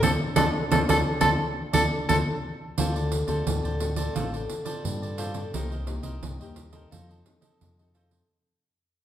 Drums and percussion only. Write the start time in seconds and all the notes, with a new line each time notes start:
0.03 pandeiro
0.36 pandeiro
0.72 pandeiro
0.89 pandeiro
1.21 pandeiro
1.74 pandeiro
2.09 pandeiro
2.78 pandeiro
2.96 pandeiro
3.12 pandeiro
3.28 pandeiro
3.47 pandeiro
3.65 pandeiro
3.80 pandeiro
3.96 pandeiro
4.16 pandeiro
4.34 pandeiro
4.49 pandeiro
4.66 pandeiro
4.85 pandeiro
5.03 pandeiro
5.18 pandeiro
5.34 pandeiro
5.54 pandeiro
5.72 pandeiro
5.87 pandeiro
6.03 pandeiro
6.23 pandeiro
6.41 pandeiro
6.56 pandeiro
6.73 pandeiro
6.92 pandeiro
7.11 pandeiro
7.26 pandeiro
7.42 pandeiro
7.61 pandeiro
7.79 pandeiro
7.95 pandeiro
8.11 pandeiro